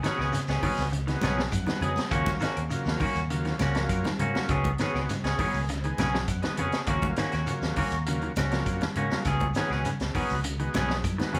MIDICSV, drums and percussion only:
0, 0, Header, 1, 3, 480
1, 0, Start_track
1, 0, Tempo, 594648
1, 1710, Time_signature, 4, 2, 24, 8
1, 9198, End_track
2, 0, Start_track
2, 0, Title_t, "Shekere"
2, 27, Note_on_c, 9, 82, 70
2, 108, Note_off_c, 9, 82, 0
2, 150, Note_on_c, 9, 82, 25
2, 230, Note_off_c, 9, 82, 0
2, 263, Note_on_c, 9, 82, 83
2, 344, Note_off_c, 9, 82, 0
2, 385, Note_on_c, 9, 82, 69
2, 466, Note_off_c, 9, 82, 0
2, 504, Note_on_c, 9, 82, 26
2, 585, Note_off_c, 9, 82, 0
2, 623, Note_on_c, 9, 82, 69
2, 704, Note_off_c, 9, 82, 0
2, 987, Note_on_c, 9, 82, 85
2, 1067, Note_off_c, 9, 82, 0
2, 1110, Note_on_c, 9, 82, 29
2, 1191, Note_off_c, 9, 82, 0
2, 1224, Note_on_c, 9, 82, 85
2, 1305, Note_off_c, 9, 82, 0
2, 1461, Note_on_c, 9, 82, 29
2, 1542, Note_off_c, 9, 82, 0
2, 1584, Note_on_c, 9, 82, 63
2, 1664, Note_off_c, 9, 82, 0
2, 1696, Note_on_c, 9, 82, 70
2, 1776, Note_off_c, 9, 82, 0
2, 1936, Note_on_c, 9, 82, 86
2, 2017, Note_off_c, 9, 82, 0
2, 2065, Note_on_c, 9, 82, 26
2, 2146, Note_off_c, 9, 82, 0
2, 2182, Note_on_c, 9, 82, 84
2, 2263, Note_off_c, 9, 82, 0
2, 2305, Note_on_c, 9, 82, 64
2, 2386, Note_off_c, 9, 82, 0
2, 2428, Note_on_c, 9, 82, 26
2, 2508, Note_off_c, 9, 82, 0
2, 2551, Note_on_c, 9, 82, 65
2, 2631, Note_off_c, 9, 82, 0
2, 2904, Note_on_c, 9, 82, 87
2, 2985, Note_off_c, 9, 82, 0
2, 3028, Note_on_c, 9, 82, 29
2, 3109, Note_off_c, 9, 82, 0
2, 3151, Note_on_c, 9, 82, 78
2, 3232, Note_off_c, 9, 82, 0
2, 3388, Note_on_c, 9, 82, 27
2, 3469, Note_off_c, 9, 82, 0
2, 3516, Note_on_c, 9, 82, 69
2, 3597, Note_off_c, 9, 82, 0
2, 3635, Note_on_c, 9, 82, 62
2, 3715, Note_off_c, 9, 82, 0
2, 3869, Note_on_c, 9, 82, 77
2, 3950, Note_off_c, 9, 82, 0
2, 3991, Note_on_c, 9, 82, 27
2, 4072, Note_off_c, 9, 82, 0
2, 4112, Note_on_c, 9, 82, 88
2, 4192, Note_off_c, 9, 82, 0
2, 4231, Note_on_c, 9, 82, 66
2, 4312, Note_off_c, 9, 82, 0
2, 4470, Note_on_c, 9, 82, 70
2, 4550, Note_off_c, 9, 82, 0
2, 4830, Note_on_c, 9, 82, 84
2, 4911, Note_off_c, 9, 82, 0
2, 4957, Note_on_c, 9, 82, 27
2, 5037, Note_off_c, 9, 82, 0
2, 5070, Note_on_c, 9, 82, 76
2, 5151, Note_off_c, 9, 82, 0
2, 5313, Note_on_c, 9, 82, 30
2, 5394, Note_off_c, 9, 82, 0
2, 5436, Note_on_c, 9, 82, 65
2, 5516, Note_off_c, 9, 82, 0
2, 5548, Note_on_c, 9, 82, 64
2, 5629, Note_off_c, 9, 82, 0
2, 5791, Note_on_c, 9, 82, 80
2, 5872, Note_off_c, 9, 82, 0
2, 5909, Note_on_c, 9, 82, 30
2, 5990, Note_off_c, 9, 82, 0
2, 6026, Note_on_c, 9, 82, 77
2, 6107, Note_off_c, 9, 82, 0
2, 6152, Note_on_c, 9, 82, 68
2, 6233, Note_off_c, 9, 82, 0
2, 6268, Note_on_c, 9, 82, 24
2, 6349, Note_off_c, 9, 82, 0
2, 6385, Note_on_c, 9, 82, 66
2, 6465, Note_off_c, 9, 82, 0
2, 6748, Note_on_c, 9, 82, 81
2, 6829, Note_off_c, 9, 82, 0
2, 6875, Note_on_c, 9, 82, 27
2, 6956, Note_off_c, 9, 82, 0
2, 6991, Note_on_c, 9, 82, 80
2, 7072, Note_off_c, 9, 82, 0
2, 7234, Note_on_c, 9, 82, 30
2, 7315, Note_off_c, 9, 82, 0
2, 7355, Note_on_c, 9, 82, 64
2, 7436, Note_off_c, 9, 82, 0
2, 7473, Note_on_c, 9, 82, 60
2, 7554, Note_off_c, 9, 82, 0
2, 7702, Note_on_c, 9, 82, 78
2, 7783, Note_off_c, 9, 82, 0
2, 7833, Note_on_c, 9, 82, 27
2, 7913, Note_off_c, 9, 82, 0
2, 7952, Note_on_c, 9, 82, 83
2, 8032, Note_off_c, 9, 82, 0
2, 8076, Note_on_c, 9, 82, 68
2, 8156, Note_off_c, 9, 82, 0
2, 8197, Note_on_c, 9, 82, 26
2, 8278, Note_off_c, 9, 82, 0
2, 8312, Note_on_c, 9, 82, 66
2, 8393, Note_off_c, 9, 82, 0
2, 8673, Note_on_c, 9, 82, 83
2, 8753, Note_off_c, 9, 82, 0
2, 8790, Note_on_c, 9, 82, 26
2, 8870, Note_off_c, 9, 82, 0
2, 8904, Note_on_c, 9, 82, 91
2, 8985, Note_off_c, 9, 82, 0
2, 9154, Note_on_c, 9, 82, 29
2, 9198, Note_off_c, 9, 82, 0
2, 9198, End_track
3, 0, Start_track
3, 0, Title_t, "Drums"
3, 31, Note_on_c, 9, 42, 52
3, 41, Note_on_c, 9, 38, 60
3, 112, Note_off_c, 9, 42, 0
3, 122, Note_off_c, 9, 38, 0
3, 152, Note_on_c, 9, 75, 72
3, 163, Note_on_c, 9, 38, 30
3, 233, Note_off_c, 9, 75, 0
3, 244, Note_off_c, 9, 38, 0
3, 276, Note_on_c, 9, 42, 63
3, 286, Note_on_c, 9, 38, 26
3, 357, Note_off_c, 9, 42, 0
3, 366, Note_off_c, 9, 38, 0
3, 389, Note_on_c, 9, 42, 29
3, 398, Note_on_c, 9, 38, 58
3, 469, Note_off_c, 9, 42, 0
3, 479, Note_off_c, 9, 38, 0
3, 506, Note_on_c, 9, 63, 71
3, 506, Note_on_c, 9, 64, 79
3, 509, Note_on_c, 9, 36, 69
3, 509, Note_on_c, 9, 46, 65
3, 509, Note_on_c, 9, 75, 63
3, 587, Note_off_c, 9, 63, 0
3, 587, Note_off_c, 9, 64, 0
3, 589, Note_off_c, 9, 36, 0
3, 590, Note_off_c, 9, 46, 0
3, 590, Note_off_c, 9, 75, 0
3, 644, Note_on_c, 9, 38, 28
3, 724, Note_off_c, 9, 38, 0
3, 749, Note_on_c, 9, 42, 64
3, 829, Note_off_c, 9, 42, 0
3, 869, Note_on_c, 9, 42, 35
3, 879, Note_on_c, 9, 38, 30
3, 950, Note_off_c, 9, 42, 0
3, 960, Note_off_c, 9, 38, 0
3, 981, Note_on_c, 9, 63, 94
3, 981, Note_on_c, 9, 64, 67
3, 987, Note_on_c, 9, 42, 44
3, 994, Note_on_c, 9, 75, 62
3, 996, Note_on_c, 9, 38, 70
3, 1061, Note_off_c, 9, 63, 0
3, 1061, Note_off_c, 9, 64, 0
3, 1068, Note_off_c, 9, 42, 0
3, 1075, Note_off_c, 9, 75, 0
3, 1077, Note_off_c, 9, 38, 0
3, 1124, Note_on_c, 9, 38, 70
3, 1205, Note_off_c, 9, 38, 0
3, 1224, Note_on_c, 9, 75, 65
3, 1226, Note_on_c, 9, 63, 62
3, 1229, Note_on_c, 9, 36, 69
3, 1234, Note_on_c, 9, 42, 79
3, 1305, Note_off_c, 9, 75, 0
3, 1307, Note_off_c, 9, 63, 0
3, 1310, Note_off_c, 9, 36, 0
3, 1315, Note_off_c, 9, 42, 0
3, 1343, Note_on_c, 9, 63, 81
3, 1349, Note_on_c, 9, 42, 29
3, 1359, Note_on_c, 9, 38, 58
3, 1424, Note_off_c, 9, 63, 0
3, 1430, Note_off_c, 9, 42, 0
3, 1440, Note_off_c, 9, 38, 0
3, 1462, Note_on_c, 9, 64, 77
3, 1471, Note_on_c, 9, 42, 55
3, 1543, Note_off_c, 9, 64, 0
3, 1552, Note_off_c, 9, 42, 0
3, 1582, Note_on_c, 9, 63, 67
3, 1594, Note_on_c, 9, 42, 30
3, 1604, Note_on_c, 9, 38, 66
3, 1663, Note_off_c, 9, 63, 0
3, 1675, Note_off_c, 9, 42, 0
3, 1685, Note_off_c, 9, 38, 0
3, 1703, Note_on_c, 9, 75, 68
3, 1707, Note_on_c, 9, 36, 90
3, 1712, Note_on_c, 9, 42, 65
3, 1784, Note_off_c, 9, 75, 0
3, 1788, Note_off_c, 9, 36, 0
3, 1793, Note_off_c, 9, 42, 0
3, 1827, Note_on_c, 9, 63, 90
3, 1828, Note_on_c, 9, 36, 62
3, 1832, Note_on_c, 9, 42, 29
3, 1842, Note_on_c, 9, 38, 27
3, 1907, Note_off_c, 9, 63, 0
3, 1909, Note_off_c, 9, 36, 0
3, 1913, Note_off_c, 9, 42, 0
3, 1922, Note_off_c, 9, 38, 0
3, 1950, Note_on_c, 9, 42, 47
3, 1960, Note_on_c, 9, 38, 61
3, 2031, Note_off_c, 9, 42, 0
3, 2041, Note_off_c, 9, 38, 0
3, 2069, Note_on_c, 9, 75, 68
3, 2072, Note_on_c, 9, 42, 36
3, 2150, Note_off_c, 9, 75, 0
3, 2152, Note_off_c, 9, 42, 0
3, 2186, Note_on_c, 9, 42, 53
3, 2267, Note_off_c, 9, 42, 0
3, 2321, Note_on_c, 9, 38, 61
3, 2402, Note_off_c, 9, 38, 0
3, 2420, Note_on_c, 9, 63, 69
3, 2420, Note_on_c, 9, 64, 75
3, 2426, Note_on_c, 9, 36, 68
3, 2428, Note_on_c, 9, 46, 58
3, 2437, Note_on_c, 9, 75, 58
3, 2501, Note_off_c, 9, 63, 0
3, 2501, Note_off_c, 9, 64, 0
3, 2507, Note_off_c, 9, 36, 0
3, 2509, Note_off_c, 9, 46, 0
3, 2517, Note_off_c, 9, 75, 0
3, 2548, Note_on_c, 9, 42, 28
3, 2628, Note_off_c, 9, 42, 0
3, 2665, Note_on_c, 9, 42, 61
3, 2746, Note_off_c, 9, 42, 0
3, 2783, Note_on_c, 9, 42, 31
3, 2793, Note_on_c, 9, 38, 28
3, 2864, Note_off_c, 9, 42, 0
3, 2873, Note_off_c, 9, 38, 0
3, 2898, Note_on_c, 9, 42, 45
3, 2901, Note_on_c, 9, 63, 74
3, 2905, Note_on_c, 9, 75, 66
3, 2908, Note_on_c, 9, 38, 64
3, 2979, Note_off_c, 9, 42, 0
3, 2982, Note_off_c, 9, 63, 0
3, 2986, Note_off_c, 9, 75, 0
3, 2989, Note_off_c, 9, 38, 0
3, 3023, Note_on_c, 9, 42, 32
3, 3033, Note_on_c, 9, 38, 75
3, 3104, Note_off_c, 9, 42, 0
3, 3114, Note_off_c, 9, 38, 0
3, 3141, Note_on_c, 9, 42, 68
3, 3144, Note_on_c, 9, 36, 73
3, 3154, Note_on_c, 9, 75, 67
3, 3221, Note_off_c, 9, 42, 0
3, 3225, Note_off_c, 9, 36, 0
3, 3235, Note_off_c, 9, 75, 0
3, 3263, Note_on_c, 9, 42, 30
3, 3270, Note_on_c, 9, 63, 82
3, 3273, Note_on_c, 9, 38, 59
3, 3344, Note_off_c, 9, 42, 0
3, 3351, Note_off_c, 9, 63, 0
3, 3353, Note_off_c, 9, 38, 0
3, 3384, Note_on_c, 9, 42, 51
3, 3385, Note_on_c, 9, 64, 78
3, 3465, Note_off_c, 9, 42, 0
3, 3465, Note_off_c, 9, 64, 0
3, 3514, Note_on_c, 9, 63, 69
3, 3518, Note_on_c, 9, 38, 61
3, 3594, Note_off_c, 9, 63, 0
3, 3598, Note_off_c, 9, 38, 0
3, 3621, Note_on_c, 9, 42, 72
3, 3626, Note_on_c, 9, 36, 92
3, 3634, Note_on_c, 9, 75, 63
3, 3701, Note_off_c, 9, 42, 0
3, 3706, Note_off_c, 9, 36, 0
3, 3715, Note_off_c, 9, 75, 0
3, 3745, Note_on_c, 9, 42, 34
3, 3747, Note_on_c, 9, 36, 59
3, 3753, Note_on_c, 9, 63, 88
3, 3826, Note_off_c, 9, 42, 0
3, 3828, Note_off_c, 9, 36, 0
3, 3833, Note_off_c, 9, 63, 0
3, 3859, Note_on_c, 9, 42, 49
3, 3869, Note_on_c, 9, 38, 69
3, 3940, Note_off_c, 9, 42, 0
3, 3950, Note_off_c, 9, 38, 0
3, 3997, Note_on_c, 9, 38, 30
3, 4000, Note_on_c, 9, 75, 71
3, 4077, Note_off_c, 9, 38, 0
3, 4081, Note_off_c, 9, 75, 0
3, 4109, Note_on_c, 9, 42, 63
3, 4115, Note_on_c, 9, 63, 60
3, 4119, Note_on_c, 9, 38, 25
3, 4190, Note_off_c, 9, 42, 0
3, 4196, Note_off_c, 9, 63, 0
3, 4200, Note_off_c, 9, 38, 0
3, 4230, Note_on_c, 9, 42, 27
3, 4240, Note_on_c, 9, 38, 57
3, 4311, Note_off_c, 9, 42, 0
3, 4321, Note_off_c, 9, 38, 0
3, 4349, Note_on_c, 9, 36, 66
3, 4349, Note_on_c, 9, 46, 57
3, 4350, Note_on_c, 9, 63, 67
3, 4350, Note_on_c, 9, 64, 72
3, 4356, Note_on_c, 9, 75, 63
3, 4429, Note_off_c, 9, 46, 0
3, 4430, Note_off_c, 9, 36, 0
3, 4430, Note_off_c, 9, 63, 0
3, 4430, Note_off_c, 9, 64, 0
3, 4437, Note_off_c, 9, 75, 0
3, 4591, Note_on_c, 9, 42, 71
3, 4601, Note_on_c, 9, 38, 31
3, 4672, Note_off_c, 9, 42, 0
3, 4681, Note_off_c, 9, 38, 0
3, 4711, Note_on_c, 9, 42, 35
3, 4792, Note_off_c, 9, 42, 0
3, 4827, Note_on_c, 9, 42, 46
3, 4830, Note_on_c, 9, 63, 84
3, 4837, Note_on_c, 9, 38, 64
3, 4837, Note_on_c, 9, 75, 66
3, 4908, Note_off_c, 9, 42, 0
3, 4910, Note_off_c, 9, 63, 0
3, 4918, Note_off_c, 9, 38, 0
3, 4918, Note_off_c, 9, 75, 0
3, 4959, Note_on_c, 9, 38, 74
3, 5040, Note_off_c, 9, 38, 0
3, 5067, Note_on_c, 9, 42, 70
3, 5070, Note_on_c, 9, 36, 67
3, 5077, Note_on_c, 9, 75, 60
3, 5147, Note_off_c, 9, 42, 0
3, 5150, Note_off_c, 9, 36, 0
3, 5158, Note_off_c, 9, 75, 0
3, 5185, Note_on_c, 9, 42, 31
3, 5193, Note_on_c, 9, 63, 83
3, 5195, Note_on_c, 9, 38, 60
3, 5266, Note_off_c, 9, 42, 0
3, 5274, Note_off_c, 9, 63, 0
3, 5276, Note_off_c, 9, 38, 0
3, 5305, Note_on_c, 9, 42, 58
3, 5314, Note_on_c, 9, 64, 84
3, 5385, Note_off_c, 9, 42, 0
3, 5395, Note_off_c, 9, 64, 0
3, 5425, Note_on_c, 9, 42, 32
3, 5435, Note_on_c, 9, 38, 65
3, 5506, Note_off_c, 9, 42, 0
3, 5515, Note_off_c, 9, 38, 0
3, 5541, Note_on_c, 9, 42, 72
3, 5548, Note_on_c, 9, 36, 95
3, 5558, Note_on_c, 9, 75, 67
3, 5622, Note_off_c, 9, 42, 0
3, 5629, Note_off_c, 9, 36, 0
3, 5638, Note_off_c, 9, 75, 0
3, 5664, Note_on_c, 9, 42, 27
3, 5670, Note_on_c, 9, 36, 67
3, 5675, Note_on_c, 9, 63, 86
3, 5745, Note_off_c, 9, 42, 0
3, 5751, Note_off_c, 9, 36, 0
3, 5756, Note_off_c, 9, 63, 0
3, 5782, Note_on_c, 9, 42, 45
3, 5791, Note_on_c, 9, 38, 71
3, 5862, Note_off_c, 9, 42, 0
3, 5872, Note_off_c, 9, 38, 0
3, 5906, Note_on_c, 9, 42, 36
3, 5916, Note_on_c, 9, 38, 28
3, 5921, Note_on_c, 9, 75, 62
3, 5987, Note_off_c, 9, 42, 0
3, 5997, Note_off_c, 9, 38, 0
3, 6002, Note_off_c, 9, 75, 0
3, 6029, Note_on_c, 9, 42, 57
3, 6109, Note_off_c, 9, 42, 0
3, 6157, Note_on_c, 9, 38, 55
3, 6238, Note_off_c, 9, 38, 0
3, 6264, Note_on_c, 9, 46, 61
3, 6270, Note_on_c, 9, 36, 65
3, 6273, Note_on_c, 9, 63, 72
3, 6273, Note_on_c, 9, 64, 75
3, 6286, Note_on_c, 9, 75, 71
3, 6345, Note_off_c, 9, 46, 0
3, 6351, Note_off_c, 9, 36, 0
3, 6354, Note_off_c, 9, 63, 0
3, 6354, Note_off_c, 9, 64, 0
3, 6367, Note_off_c, 9, 75, 0
3, 6391, Note_on_c, 9, 42, 31
3, 6472, Note_off_c, 9, 42, 0
3, 6509, Note_on_c, 9, 42, 67
3, 6590, Note_off_c, 9, 42, 0
3, 6632, Note_on_c, 9, 42, 29
3, 6713, Note_off_c, 9, 42, 0
3, 6748, Note_on_c, 9, 42, 45
3, 6756, Note_on_c, 9, 63, 86
3, 6757, Note_on_c, 9, 38, 66
3, 6763, Note_on_c, 9, 75, 67
3, 6828, Note_off_c, 9, 42, 0
3, 6836, Note_off_c, 9, 63, 0
3, 6838, Note_off_c, 9, 38, 0
3, 6843, Note_off_c, 9, 75, 0
3, 6873, Note_on_c, 9, 42, 33
3, 6882, Note_on_c, 9, 38, 66
3, 6953, Note_off_c, 9, 42, 0
3, 6963, Note_off_c, 9, 38, 0
3, 6990, Note_on_c, 9, 42, 63
3, 6992, Note_on_c, 9, 36, 71
3, 6999, Note_on_c, 9, 75, 62
3, 7070, Note_off_c, 9, 42, 0
3, 7073, Note_off_c, 9, 36, 0
3, 7080, Note_off_c, 9, 75, 0
3, 7109, Note_on_c, 9, 42, 30
3, 7118, Note_on_c, 9, 63, 84
3, 7119, Note_on_c, 9, 38, 66
3, 7190, Note_off_c, 9, 42, 0
3, 7199, Note_off_c, 9, 38, 0
3, 7199, Note_off_c, 9, 63, 0
3, 7228, Note_on_c, 9, 42, 51
3, 7238, Note_on_c, 9, 64, 76
3, 7309, Note_off_c, 9, 42, 0
3, 7319, Note_off_c, 9, 64, 0
3, 7360, Note_on_c, 9, 63, 72
3, 7361, Note_on_c, 9, 38, 57
3, 7441, Note_off_c, 9, 63, 0
3, 7442, Note_off_c, 9, 38, 0
3, 7464, Note_on_c, 9, 42, 68
3, 7471, Note_on_c, 9, 36, 87
3, 7473, Note_on_c, 9, 38, 33
3, 7476, Note_on_c, 9, 75, 64
3, 7481, Note_on_c, 9, 64, 66
3, 7544, Note_off_c, 9, 42, 0
3, 7552, Note_off_c, 9, 36, 0
3, 7554, Note_off_c, 9, 38, 0
3, 7557, Note_off_c, 9, 75, 0
3, 7562, Note_off_c, 9, 64, 0
3, 7586, Note_on_c, 9, 42, 27
3, 7593, Note_on_c, 9, 36, 57
3, 7597, Note_on_c, 9, 63, 87
3, 7666, Note_off_c, 9, 42, 0
3, 7673, Note_off_c, 9, 36, 0
3, 7678, Note_off_c, 9, 63, 0
3, 7707, Note_on_c, 9, 42, 48
3, 7717, Note_on_c, 9, 38, 67
3, 7788, Note_off_c, 9, 42, 0
3, 7797, Note_off_c, 9, 38, 0
3, 7840, Note_on_c, 9, 38, 29
3, 7840, Note_on_c, 9, 75, 66
3, 7921, Note_off_c, 9, 38, 0
3, 7921, Note_off_c, 9, 75, 0
3, 7949, Note_on_c, 9, 42, 57
3, 7957, Note_on_c, 9, 63, 62
3, 8029, Note_off_c, 9, 42, 0
3, 8038, Note_off_c, 9, 63, 0
3, 8070, Note_on_c, 9, 42, 25
3, 8079, Note_on_c, 9, 38, 57
3, 8150, Note_off_c, 9, 42, 0
3, 8160, Note_off_c, 9, 38, 0
3, 8189, Note_on_c, 9, 46, 59
3, 8191, Note_on_c, 9, 36, 66
3, 8198, Note_on_c, 9, 63, 72
3, 8198, Note_on_c, 9, 64, 82
3, 8200, Note_on_c, 9, 75, 65
3, 8270, Note_off_c, 9, 46, 0
3, 8272, Note_off_c, 9, 36, 0
3, 8279, Note_off_c, 9, 63, 0
3, 8279, Note_off_c, 9, 64, 0
3, 8281, Note_off_c, 9, 75, 0
3, 8426, Note_on_c, 9, 42, 76
3, 8507, Note_off_c, 9, 42, 0
3, 8552, Note_on_c, 9, 42, 31
3, 8632, Note_off_c, 9, 42, 0
3, 8667, Note_on_c, 9, 42, 47
3, 8674, Note_on_c, 9, 63, 83
3, 8677, Note_on_c, 9, 38, 61
3, 8677, Note_on_c, 9, 75, 60
3, 8748, Note_off_c, 9, 42, 0
3, 8755, Note_off_c, 9, 63, 0
3, 8757, Note_off_c, 9, 75, 0
3, 8758, Note_off_c, 9, 38, 0
3, 8798, Note_on_c, 9, 38, 65
3, 8879, Note_off_c, 9, 38, 0
3, 8912, Note_on_c, 9, 36, 68
3, 8915, Note_on_c, 9, 42, 76
3, 8916, Note_on_c, 9, 63, 71
3, 8916, Note_on_c, 9, 75, 64
3, 8993, Note_off_c, 9, 36, 0
3, 8996, Note_off_c, 9, 42, 0
3, 8996, Note_off_c, 9, 75, 0
3, 8997, Note_off_c, 9, 63, 0
3, 9034, Note_on_c, 9, 42, 30
3, 9040, Note_on_c, 9, 63, 80
3, 9044, Note_on_c, 9, 38, 56
3, 9115, Note_off_c, 9, 42, 0
3, 9120, Note_off_c, 9, 63, 0
3, 9125, Note_off_c, 9, 38, 0
3, 9156, Note_on_c, 9, 42, 57
3, 9158, Note_on_c, 9, 64, 79
3, 9198, Note_off_c, 9, 42, 0
3, 9198, Note_off_c, 9, 64, 0
3, 9198, End_track
0, 0, End_of_file